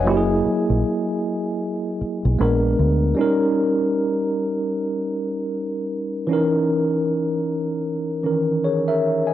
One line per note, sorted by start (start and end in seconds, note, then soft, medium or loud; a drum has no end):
0.00 0.29 D#5 soft
0.00 0.28 G#5 medium
0.04 0.40 F#1 medium
0.04 2.35 F#3 medium
0.04 2.36 A#3 medium
0.09 2.37 E4 medium
0.09 0.16 G4 medium
0.17 2.41 G#4 medium
0.46 muted fingered electric bass stroke soft
0.70 0.82 A#1 medium
2.01 muted fingered electric bass stroke soft
2.25 2.38 B1 medium
2.39 2.74 A#1 medium
2.39 3.17 G#3 medium
2.39 3.17 B3 medium
2.39 3.18 D4 medium
2.39 3.18 A#4 medium
2.79 3.13 D2 medium
3.15 6.24 G3 medium
3.15 6.25 C#4 medium
3.19 6.26 D#4 medium
3.19 6.27 A#4 medium
6.27 8.19 E3 medium
6.27 8.20 C#4 medium
6.31 8.21 D#4 medium
6.31 8.22 A#4 medium
8.23 9.34 D#3 soft
8.23 9.34 E3 soft
8.23 9.34 C#4 soft
8.23 8.64 A#4 soft
8.65 8.86 G#4 soft
8.65 8.86 C#5 medium
8.88 9.24 A#4 soft
8.88 9.24 E5 medium
9.27 9.34 D#5 soft
9.27 9.34 G#5 medium